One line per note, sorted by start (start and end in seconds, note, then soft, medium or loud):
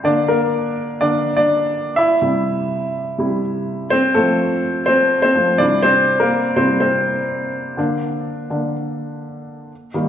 0.04 0.73 D3 medium
0.04 0.28 A#3 medium
0.04 0.27 D4 medium
0.04 0.30 D5 medium
0.28 0.97 A#3 medium
0.28 1.03 A#4 medium
1.01 1.23 D3 medium
1.01 1.23 A#3 soft
1.01 1.35 D4 medium
1.01 1.35 D5 loud
1.37 1.94 D4 medium
1.37 1.99 D5 medium
1.96 2.21 E4 medium
1.96 3.38 E5 loud
2.22 2.91 C3 medium
2.22 2.91 G3 medium
2.22 2.91 E4 medium
3.18 3.40 C3 medium
3.18 3.41 G3 soft
3.18 3.41 E4 medium
3.90 4.14 C4 medium
3.90 4.16 C5 loud
4.14 5.34 F3 medium
4.14 4.61 A3 medium
4.14 4.87 C4 medium
4.14 4.60 A4 medium
4.86 5.22 C4 medium
4.86 5.20 C5 medium
5.22 5.35 C4 medium
5.22 5.61 C5 medium
5.35 5.57 F3 soft
5.35 5.58 A3 soft
5.35 5.58 C4 medium
5.58 6.28 C3 medium
5.58 6.29 G3 soft
5.58 5.83 D4 medium
5.58 6.29 E4 medium
5.58 5.84 D5 loud
5.82 6.18 C4 medium
5.82 6.21 C5 loud
6.20 6.55 A#3 medium
6.20 6.57 A#4 medium
6.56 6.78 C3 soft
6.56 6.79 G3 soft
6.56 6.63 C4 medium
6.56 6.79 E4 medium
6.56 6.62 C5 medium
6.80 7.50 C4 medium
6.80 7.49 C5 medium
7.77 8.46 D3 medium
7.77 8.47 A#3 medium
7.77 8.47 D4 medium
8.50 8.72 D3 soft
8.50 8.72 A#3 soft
8.50 8.72 D4 medium
9.94 10.09 D#3 medium
9.94 10.09 G3 soft
9.94 10.09 A#3 medium